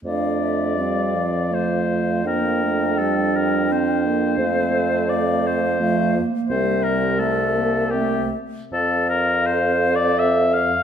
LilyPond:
<<
  \new Staff \with { instrumentName = "Flute" } { \time 3/4 \key f \major \tempo 4 = 83 f''8 e''8 f''2 | g''2. | f''4 f''4 f''8 r8 | e''4 e''4 e''8 r8 |
f''2. | }
  \new Staff \with { instrumentName = "Oboe" } { \time 3/4 \key f \major d''2 c''4 | bes'4 a'8 bes'8 c''4~ | c''4 d''8 c''4 r8 | c''8 bes'8 a'4 g'8 r8 |
a'8 bes'8 \tuplet 3/2 { c''4 d''8 } e''8 f''8 | }
  \new Staff \with { instrumentName = "Clarinet" } { \time 3/4 \key f \major d'4 c'4 a4 | d'2. | c'4 c'4 a8 bes8 | c'4. r8 a8 r8 |
r4 a'2 | }
  \new Staff \with { instrumentName = "French horn" } { \time 3/4 \key f \major a4 g8 f4. | bes8 a8 g4 c'8 bes8 | a2 f8 r8 | g4 a8 bes8 c'8 r8 |
c'2. | }
  \new Staff \with { instrumentName = "Bassoon" } { \clef bass \time 3/4 \key f \major f,2.~ | f,2. | f,2~ f,8 r8 | c,2~ c,8 r8 |
f,2. | }
>>